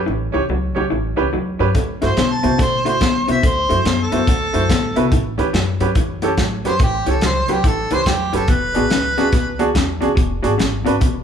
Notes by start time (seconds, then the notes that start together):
Already playing: A4
0.06 A1 A2 E3
0.32 C#2 A2 E3 C#4 G4 C#5
0.49 C#2 A2 F#3
0.75 C#2 A2 F#3 C#4 G4 C#5
0.90 A1 A2 E3
1.16 C#2 A2 E3 C#4 G4 B4
1.33 E2 A2 F#3
1.59 G2 A2 F#3 C#4 G4 B4
1.75 D2 D3 A3, kick, closed hi-hat
2.01 G2 D3 A3 E4 F#4 C5, snare, closed hi-hat
2.05 C5
2.17 B2 D3 B3, snare, closed hi-hat
2.33 A5
2.43 C3 D3 B3 E4 F#4 C5, closed hi-hat
2.58 B2 D3 A3 C5, kick, snare, closed hi-hat
2.85 D3 A3 E4 F#4 C5, closed hi-hat
3.01 D3 B3, kick, snare, closed hi-hat
3.28 B2 D3 B3 E4 F#4 C5 E5, closed hi-hat
3.43 D2 D3 A3 C5, kick, closed hi-hat
3.69 F#2 D3 A3 E4 F#4 C5, closed hi-hat
3.85 F#2 D3 B3, snare, closed hi-hat
4.03 A4
4.12 F#2 D3 B3 E4 F#4 C5, closed hi-hat
4.28 D2 D3 A3, kick, closed hi-hat
4.53 F#2 D3 A3 E4 F#4 C5, closed hi-hat
4.69 D3 B3, kick, snare, closed hi-hat
4.96 C3 D3 B3 E4 F#4 B4, closed hi-hat
5.12 A1 A2 E3, kick, closed hi-hat
5.38 D2 A2 E3 C#4 G4 B4, closed hi-hat
5.53 F#2 A2 F#3, snare, closed hi-hat
5.80 G2 A2 F#3 C#4 G4 B4, closed hi-hat
5.95 F#2 A2 E3, kick, closed hi-hat
6.22 A2 E3 C#4 G4 A4, closed hi-hat
6.37 A2 F#3, kick, snare, closed hi-hat
6.64 F#2 A2 F#3 C#4 G4 B4 C5, snare, closed hi-hat
6.79 A1 A2 E3 G4, kick, closed hi-hat
7.06 C#2 A2 E3 C#4 G4 A4 C#5, closed hi-hat
7.21 C#2 A2 F#3, snare, closed hi-hat
7.26 C5
7.48 C#2 A2 F#3 C#4 G4 B4, closed hi-hat
7.52 G4
7.64 A1 A2 E3 A4, kick, closed hi-hat
7.91 C#2 A2 E3 C#4 G4 B4 C5, closed hi-hat
8.06 E2 A2 F#3 G4, kick, snare, closed hi-hat
8.33 F#1 A2 F#3 C#4 G4 A4 B4, closed hi-hat
8.48 E1 E2 B2 B4, kick, closed hi-hat
8.74 A1 E2 B2 D4 F#4 G#4, closed hi-hat
8.90 E2 C#3, snare, closed hi-hat
9.17 D2 E2 C#3 D4 F#4 G#4, snare, closed hi-hat
9.32 C#2 E2 B2, kick, snare, closed hi-hat
9.59 E2 B2 D4 F#4 G#4, closed hi-hat
9.75 E2 C#3, kick, snare, closed hi-hat
10.01 C#2 E2 C#3 D4 F#4 G#4, closed hi-hat
10.15 E1 E2 B2, kick, closed hi-hat
10.43 G#1 E2 B2 D4 F#4 G#4, closed hi-hat
10.58 G#1 E2 C#3, snare, closed hi-hat
10.85 G#1 E2 C#3 D4 F#4 B4, closed hi-hat
11.00 E1 E2 B2, kick, closed hi-hat